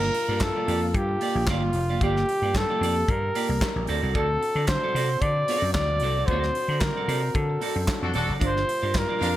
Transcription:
Already playing: D3 G3 A#3 F4 A#4
0.02 muted clean electric guitar stroke, snare
0.14 muted clean electric guitar stroke, open hi-hat
0.28 G2 A#3 F4 G4 D5
0.40 A4, muted clean electric guitar stroke, kick, snare, clap, closed hi-hat
0.55 A#3 F4 G4 D5
0.68 F2 A#3 F4 G4 D5, open hi-hat
0.81 muted clean electric guitar stroke
0.89 A4
0.94 G2 G4, muted clean electric guitar stroke, kick, closed hi-hat
1.09 muted clean electric guitar stroke
1.21 A#3 F4 G4 D5, open hi-hat
1.35 A#1, muted clean electric guitar stroke
1.47 G1 A#3 F4 G4 D5, kick, snare, clap, closed hi-hat
1.64 muted clean electric guitar stroke
1.73 F1, muted clean electric guitar stroke, open hi-hat
1.90 A#3 F4 G4 D5
2.01 G1 A#3 F4 G4 D5, kick, closed hi-hat
2.16 muted clean electric guitar stroke, snare
2.29 muted clean electric guitar stroke, open hi-hat
2.42 G2 A#3 F4 G4 D5
2.54 A4, kick, snare, clap, closed hi-hat
2.70 A#3 F4 G4 D5
2.81 F2 A#3 F4 G4 D5, open hi-hat
2.96 muted clean electric guitar stroke
3.08 G2 A#4, muted clean electric guitar stroke, kick, closed hi-hat
3.22 muted clean electric guitar stroke
3.35 A#3 F4 G4 D5, open hi-hat
3.49 C2, muted clean electric guitar stroke
3.61 muted clean electric guitar stroke, kick, snare, clap, closed hi-hat
3.76 A#1, muted clean electric guitar stroke
3.87 D2 F#3 C4 F#4 A4 D5, open hi-hat
4.02 C2 C4 F#4 A4 D5
4.15 D2 C4 F#4 A4 D5, kick, closed hi-hat
4.29 muted clean electric guitar stroke
4.41 muted clean electric guitar stroke, open hi-hat
4.55 D3 C4 F#4 A4 D5
4.67 C5, muted clean electric guitar stroke, kick, snare, clap, closed hi-hat
4.83 C4 F#4 A4 D5
4.95 C3 C4 F#4 A4 D5, open hi-hat
5.10 muted clean electric guitar stroke
5.21 D3 D5, muted clean electric guitar stroke, kick, closed hi-hat
5.36 muted clean electric guitar stroke
5.48 C4 F#4 A4 D5, open hi-hat
5.62 F#2, muted clean electric guitar stroke
5.73 D2 D5, muted clean electric guitar stroke, kick, snare, clap
5.90 muted clean electric guitar stroke
6.00 C2 C4 F#4 A4 D5, open hi-hat
6.18 C4 F#4 A4 D5
6.26 D2 C4 C5, kick, closed hi-hat
6.31 F#4 A4 D5
6.43 muted clean electric guitar stroke, snare
6.55 muted clean electric guitar stroke, open hi-hat
6.68 D3 C4 F#4 A4 D5
6.80 A#4, muted clean electric guitar stroke, kick, snare, clap, closed hi-hat
6.96 C4 F#4 A4 D5
7.08 C3 C4 F#4 A4 D5, open hi-hat
7.23 muted clean electric guitar stroke
7.35 D3 A4, muted clean electric guitar stroke, kick, closed hi-hat
7.50 muted clean electric guitar stroke
7.61 C4 F#4 A4 D5, open hi-hat
7.76 F#2, muted clean electric guitar stroke
7.88 muted clean electric guitar stroke, kick, snare, clap, closed hi-hat
8.01 F2 D4 F#4 A4, muted clean electric guitar stroke
8.14 D#1 C4 D4 F#4 A4 D5, open hi-hat
8.29 F#1 C4 F#4 A4 D5
8.39 G1 D3 G3 A#3 D4 F4 A#4 D5, kick, closed hi-hat
8.44 C5
8.55 muted clean electric guitar stroke, snare
8.67 muted clean electric guitar stroke, open hi-hat
8.82 G2 D4 F4 A#4 D5
8.94 A#4, muted clean electric guitar stroke, kick, snare, clap, closed hi-hat
9.09 D4 F4 A#4 D5
9.21 F2 D4 F4 A#4 D5 F5, open hi-hat

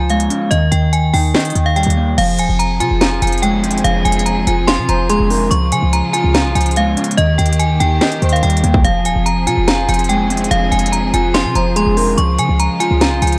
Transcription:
Already playing: C#2 F3 F4 F5
0.10 G#3 F5, closed hi-hat
0.20 closed hi-hat
0.30 C#4, closed hi-hat
0.51 D#2 D#3 D#5, closed hi-hat
0.72 D#2 G5, closed hi-hat
0.93 G#5, closed hi-hat
1.14 D#2 D#4 G5, open hi-hat
1.34 D#5 G5, snare, closed hi-hat
1.40 closed hi-hat
1.45 closed hi-hat
1.50 closed hi-hat
1.55 D#2 D#3, closed hi-hat
1.66 F5
1.76 G3 G5, closed hi-hat
1.83 D#2, closed hi-hat
1.90 closed hi-hat
1.97 A#3
2.18 F1 F3 C4 G#4 F5, closed hi-hat, crash
2.39 D#1 G#5, closed hi-hat
2.49 F1
2.59 A#5, closed hi-hat
2.80 C3 F4 G#5, closed hi-hat
2.91 F1
3.01 F5 A#5, snare, closed hi-hat
3.22 F1 F3 G#5, closed hi-hat
3.27 closed hi-hat
3.32 closed hi-hat
3.38 closed hi-hat
3.42 G#3 G5, closed hi-hat
3.63 C4, closed hi-hat
3.71 closed hi-hat
3.78 closed hi-hat
3.84 F1 F3 F5, closed hi-hat
4.05 F1 G#5, closed hi-hat
4.12 closed hi-hat
4.19 closed hi-hat
4.26 A#5, closed hi-hat
4.47 F1 F4 G#5, closed hi-hat
4.67 F5 C6, snare, closed hi-hat
4.78 C3
4.89 F1 F3 C5 A#5, closed hi-hat
5.09 D#1 G#3 G#4 C6, closed hi-hat
5.20 F1
5.30 C4 A#4, open hi-hat
5.51 C#2 C#3 F3 G#3 F4 C#6, closed hi-hat
5.72 C#3 G#5, closed hi-hat
5.82 C#2
5.93 A#5, closed hi-hat
6.13 F4 G#5, closed hi-hat
6.24 C#2
6.34 F5 A#5, snare, closed hi-hat
6.45 C2
6.55 C#2 F3 G#5, closed hi-hat
6.61 closed hi-hat
6.66 closed hi-hat
6.71 closed hi-hat
6.76 G#3 F5, closed hi-hat
6.97 C#4, closed hi-hat
7.04 closed hi-hat
7.11 closed hi-hat
7.17 D#2 D#3 A#3 G4 D#5, closed hi-hat
7.38 D#2 G5, closed hi-hat
7.46 closed hi-hat
7.53 closed hi-hat
7.59 G#5, closed hi-hat
7.80 D#2 D#4 G5, closed hi-hat
8.01 D#5 G5, snare, closed hi-hat
8.12 closed hi-hat
8.22 D#2 D#3 C5, closed hi-hat
8.29 F5, closed hi-hat
8.36 closed hi-hat
8.43 D#2 G3 G5, closed hi-hat
8.50 closed hi-hat
8.57 closed hi-hat
8.63 D#2 A#3, closed hi-hat
8.74 kick
8.84 F1 F3 C4 G#4 F5, closed hi-hat
9.05 D#1 G#5, closed hi-hat
9.16 F1
9.26 A#5, closed hi-hat
9.47 C3 F4 G#5, closed hi-hat
9.57 F1
9.68 F5 A#5, snare, closed hi-hat
9.89 F1 F3 G#5, closed hi-hat
9.94 closed hi-hat
9.99 closed hi-hat
10.04 closed hi-hat
10.09 G#3 G5, closed hi-hat
10.30 C4, closed hi-hat
10.37 closed hi-hat
10.44 closed hi-hat
10.51 F1 F3 F5, closed hi-hat
10.72 F1 G#5, closed hi-hat
10.79 closed hi-hat
10.86 closed hi-hat
10.92 A#5, closed hi-hat
11.14 F1 F4 G#5, closed hi-hat
11.34 F5 C6, snare, closed hi-hat
11.45 C3
11.55 F1 F3 C5 A#5, closed hi-hat
11.76 D#1 G#3 G#4 C6, closed hi-hat
11.87 F1
11.97 C4 A#4, open hi-hat
12.18 C#2 C#3 F3 G#3 F4 C#6, closed hi-hat
12.39 C#3 G#5, closed hi-hat
12.49 C#2
12.60 A#5, closed hi-hat
12.80 F4 G#5, closed hi-hat
12.91 C#2
13.01 F5 A#5, snare, closed hi-hat
13.12 C2
13.22 C#2 F3 G#5, closed hi-hat
13.27 closed hi-hat
13.32 closed hi-hat

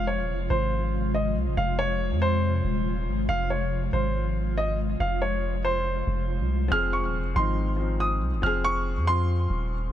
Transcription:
Already playing: F1 C3 F3 G#3 F4
0.07 C#5
0.18 D#1
0.34 F1
0.50 G#1 C5
1.14 D#5
1.36 C2
1.47 G#1
1.57 F1 F5
1.79 C#5
2.11 F2
2.22 C5
2.65 D#1
3.07 G#1
3.29 F1 F4 F5
3.50 C#5
3.93 G#1 C5
4.58 D#5
5.00 F1 F5
5.22 C#5
5.65 C5
6.07 F1
6.40 C2
6.68 F1 F3 C4 F6
6.73 G#4
6.93 C#6
7.04 D#1
7.20 F1
7.34 G#1 F3 C4 C6
7.39 D#4
7.76 F3 C4
7.81 D#4
8.00 D#6
8.22 C2
8.32 G#1
8.42 F1 F3 C4 F6
8.46 G#4
8.64 C#6
8.97 F2
9.05 F3 C4 C6
9.09 F4
9.50 D#1

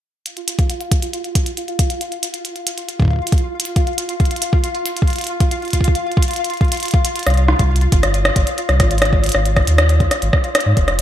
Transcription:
0.26 F4 F5, closed hi-hat
0.37 closed hi-hat
0.48 closed hi-hat
0.59 kick, closed hi-hat
0.70 closed hi-hat
0.81 closed hi-hat
0.92 kick, closed hi-hat
1.02 closed hi-hat
1.13 closed hi-hat
1.24 closed hi-hat
1.35 kick, closed hi-hat
1.46 closed hi-hat
1.57 closed hi-hat
1.68 closed hi-hat
1.79 kick, closed hi-hat
1.90 closed hi-hat
2.01 closed hi-hat
2.12 closed hi-hat
2.23 closed hi-hat
2.34 closed hi-hat
2.45 closed hi-hat
2.56 closed hi-hat
2.67 closed hi-hat
2.78 closed hi-hat
2.89 closed hi-hat
3.00 kick
3.02 kick
3.05 kick
3.08 kick
3.10 kick
3.13 kick
3.16 kick
3.19 kick
3.27 closed hi-hat
3.32 kick, closed hi-hat
3.38 closed hi-hat
3.60 closed hi-hat
3.65 closed hi-hat
3.76 kick, closed hi-hat
3.87 closed hi-hat
3.98 closed hi-hat
4.09 closed hi-hat
4.20 kick, closed hi-hat
4.25 closed hi-hat
4.31 closed hi-hat
4.36 closed hi-hat
4.42 closed hi-hat
4.53 kick
4.64 closed hi-hat
4.75 closed hi-hat
4.86 closed hi-hat
4.97 closed hi-hat
5.02 kick
5.08 closed hi-hat
5.10 closed hi-hat
5.13 closed hi-hat
5.16 closed hi-hat
5.19 closed hi-hat
5.21 closed hi-hat
5.24 closed hi-hat
5.27 closed hi-hat
5.40 kick, closed hi-hat
5.51 closed hi-hat
5.62 closed hi-hat
5.65 closed hi-hat
5.68 closed hi-hat
5.71 closed hi-hat
5.73 kick, closed hi-hat
5.81 kick, closed hi-hat
5.88 kick
5.95 closed hi-hat
6.12 closed hi-hat
6.17 kick
6.23 closed hi-hat
6.28 closed hi-hat
6.31 closed hi-hat
6.33 closed hi-hat
6.36 closed hi-hat
6.44 closed hi-hat
6.50 closed hi-hat
6.54 closed hi-hat
6.57 kick, closed hi-hat
6.61 closed hi-hat
6.65 closed hi-hat
6.68 closed hi-hat
6.72 closed hi-hat
6.75 closed hi-hat
6.77 closed hi-hat
6.80 closed hi-hat
6.83 closed hi-hat
6.86 closed hi-hat
6.88 closed hi-hat
6.91 kick, closed hi-hat
7.05 closed hi-hat
7.16 closed hi-hat
7.19 closed hi-hat
7.23 cross-stick, closed hi-hat
7.27 C2, closed hi-hat
7.30 closed hi-hat
7.34 closed hi-hat
7.37 closed hi-hat
7.48 cross-stick
7.59 C2, kick, closed hi-hat
7.76 closed hi-hat
7.81 closed hi-hat
7.92 G1, kick, closed hi-hat
8.03 cross-stick, closed hi-hat
8.14 closed hi-hat
8.25 cross-stick, closed hi-hat
8.36 G1, kick, closed hi-hat
8.47 closed hi-hat
8.58 closed hi-hat
8.69 C2, cross-stick, closed hi-hat
8.80 G#1, kick, cross-stick, closed hi-hat
8.91 closed hi-hat
8.98 cross-stick, closed hi-hat
9.02 closed hi-hat
9.05 closed hi-hat
9.13 kick
9.24 closed hi-hat
9.26 closed hi-hat
9.29 closed hi-hat
9.32 G#1, cross-stick, closed hi-hat
9.46 closed hi-hat
9.56 kick, cross-stick, closed hi-hat
9.67 D#2, closed hi-hat
9.78 cross-stick, closed hi-hat
9.89 closed hi-hat
10.00 kick, closed hi-hat
10.11 cross-stick, closed hi-hat
10.22 G#1, closed hi-hat
10.33 kick, cross-stick
10.44 closed hi-hat
10.55 cross-stick, closed hi-hat
10.60 closed hi-hat
10.66 G#2
10.77 F1, kick, closed hi-hat
10.88 cross-stick, closed hi-hat

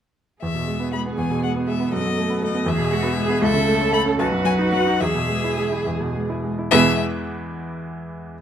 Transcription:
0.42 E2 B3 G#4 E5
0.55 B2
0.67 G#3
0.80 B3
0.93 G#3 B5
1.06 B3
1.17 E2 G#5
1.30 B2
1.43 G#3 F#5
1.55 B3
1.68 G#3 E5
1.80 B3
1.92 F#2 A4 D#5
2.05 F#3
2.17 A3
2.30 B3
2.42 A3 D#5
2.54 B3
2.66 E2 G#4 E5
2.78 B2
2.91 G#3 F#4
3.03 B3
3.16 G#3 G#4
3.29 B3
3.42 C#2 A4 E5
3.54 C#3
3.66 A3
3.80 C#4
3.93 A3 B5
4.05 C#4
4.19 B1 F#4 B4 A5
4.32 F#2
4.45 F#3 G#5
4.59 D#4
4.72 F#3 F#5
4.87 D#4
5.00 E2 G#4 E5
5.15 B2
5.29 G#3
5.44 E4
5.58 G#3
5.72 E4
5.86 E2
6.00 B2
6.15 G#3
6.30 E4
6.44 G#3
6.58 E4
6.71 E2 B2 E3 G#3 E4 G#4 B4 E5

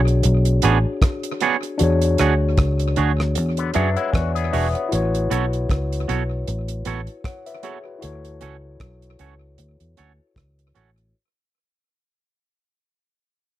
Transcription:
Already playing: B1 D4 F#4 G#4 C#5
0.08 closed hi-hat
0.23 B1, closed hi-hat
0.45 closed hi-hat
0.62 A1 B3 D4 G#4 C#5, closed hi-hat
1.02 kick, cross-stick, closed hi-hat
1.23 closed hi-hat
1.40 B3 D4 G#4 C#5, closed hi-hat
1.63 closed hi-hat
1.78 E2 D4 F#4 G#4, closed hi-hat
1.83 C#5
2.01 closed hi-hat
2.18 D2 D4 F#4 G#4 C#5, cross-stick, closed hi-hat
2.57 C#2, kick, cross-stick, closed hi-hat
2.79 closed hi-hat
2.96 D2 D4 F#4 G#4 C#5, closed hi-hat
3.20 cross-stick
3.35 E2, closed hi-hat
3.57 D3 B3, closed hi-hat
3.74 F#2 F#3 D4 F#4 G#4 B4 C#5 E5, closed hi-hat
3.96 G#3 E4 C#5 F#5, closed hi-hat
4.13 E2 F#4 D5 G#5, kick, cross-stick, closed hi-hat
4.35 B3 G#4, closed hi-hat
4.53 E1 D4 F#4 G#4 B4 C#5 E5, open hi-hat
4.75 C#5 F#5, closed hi-hat
4.89 E4 F#4, closed hi-hat
4.93 A1 B4 C#5
5.15 closed hi-hat
5.30 B1 B3 F#4 A4 C#5, closed hi-hat
5.53 closed hi-hat
5.70 C#2, kick, cross-stick, closed hi-hat
5.92 closed hi-hat
6.08 B1 B3 F#4 A4 C#5, closed hi-hat
6.47 A1, closed hi-hat
6.68 closed hi-hat
6.85 A1 B3 F#4 A4 C#5, closed hi-hat
7.07 closed hi-hat
7.24 C#5 F#5, kick, cross-stick, closed hi-hat
7.46 B4 E5, closed hi-hat
7.63 B3 F#4 G#4 A4 C#5, closed hi-hat
7.84 F#4 B4
7.99 E4 F#4 A4, closed hi-hat
8.04 D2 C#5
8.25 closed hi-hat
8.41 C#2 C#4 F#4 A4 C#5, closed hi-hat
8.80 B1, kick, cross-stick, closed hi-hat
9.02 closed hi-hat
9.19 C#2 C#4 F#4 A4 C#5, closed hi-hat
9.58 D2, closed hi-hat
9.80 E2, closed hi-hat
9.97 D2 C#4 F#4 A4 C#5, closed hi-hat
10.36 C#2, kick, cross-stick, closed hi-hat
10.59 closed hi-hat
10.75 A1 C#4 F#4 A4 C#5, closed hi-hat
10.98 closed hi-hat

